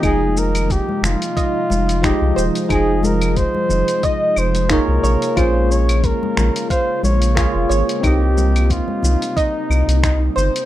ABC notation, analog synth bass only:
X:1
M:4/4
L:1/16
Q:"Swing 16ths" 1/4=90
K:Fm
V:1 name="Analog synth bass" clef=bass
F,,,4- F,,, z F,,, z3 F,,,3 C,, E,,, z | F,,,4- F,,, z F,,, z3 F,,,3 C,, B,,, z | B,,,4- B,,, z B,,, z3 B,,,3 F,,, A,,, z | C,,4- C,, z C,, z3 C,, C,,3 G,,, z |]